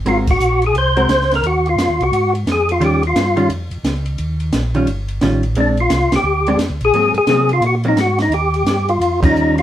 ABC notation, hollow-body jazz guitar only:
X:1
M:4/4
L:1/8
Q:"Swing" 1/4=174
K:Ebmix
V:1 name="Hollow-body jazz guitar"
[A,C_GB] z4 [A,CGB] z2 | z8 | [E,G,DF] z2 [E,G,DF] z4 | z3 [E,G,DF] z2 [E,G,DF] z |
[A,C=D] z4 [A,CD] z2 | [_G,B,C] z [G,B,C] z2 [G,B,C] z2 | z4 z [E,G,DF]3 |]